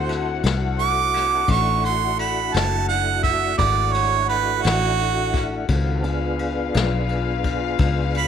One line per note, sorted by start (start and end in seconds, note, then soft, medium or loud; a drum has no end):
0.00 0.41 D2 medium
0.00 5.65 A3 medium
0.00 1.43 C4 medium
0.00 8.28 D4 medium
0.00 1.44 E4 medium
0.00 1.44 F#4 medium
0.00 5.66 F#4 medium
0.00 1.44 A4 medium
0.00 5.65 A4 medium
0.00 0.40 C5 loud
0.00 5.66 F#5 loud
0.09 snare soft
0.09 ride medium
0.43 1.46 C2 medium
0.43 snare loud
0.43 ride medium
0.79 1.47 D6 loud
0.79 ride medium
1.14 snare soft
1.14 ride medium
1.48 2.51 A1 medium
1.48 5.66 A3 medium
1.48 5.65 D4 medium
1.48 5.65 E4 medium
1.48 5.66 F#4 medium
1.48 1.84 C#6 loud
1.48 kick loud
1.48 ride medium
1.84 2.18 C6 medium
1.84 ride medium
2.19 2.55 B5 medium
2.19 ride medium
2.54 3.56 F#1 loud
2.54 2.88 A5 loud
2.54 snare loud
2.54 ride medium
2.88 3.22 F#5 loud
2.88 ride medium
3.23 3.57 E5 medium
3.23 kick medium
3.23 ride medium
3.58 4.61 G#1 loud
3.58 3.94 D5 loud
3.58 kick loud
3.58 ride medium
3.92 4.27 C#5 loud
3.92 ride medium
4.28 4.63 B4 loud
4.28 ride medium
4.62 5.67 A1 loud
4.62 5.65 F#4 loud
4.62 ride medium
4.67 snare loud
4.99 ride medium
5.34 kick medium
5.34 snare soft
5.34 ride medium
5.68 6.71 C#2 medium
5.68 6.04 D#3 medium
5.68 6.05 C4 medium
5.68 8.28 F4 medium
5.68 6.05 F#4 medium
5.68 6.05 A4 medium
5.68 8.28 B4 medium
5.68 8.28 F5 loud
5.68 kick loud
5.68 ride medium
6.03 8.28 B3 medium
6.03 8.28 D4 medium
6.03 8.28 F4 medium
6.03 8.28 G#4 medium
6.03 ride medium
6.39 ride medium
6.74 7.77 B1 loud
6.74 snare loud
6.74 ride medium
7.09 ride medium
7.44 kick medium
7.44 ride medium
7.79 8.28 C#2 loud
7.79 kick loud
7.79 ride medium
8.14 8.28 B5 loud
8.14 ride medium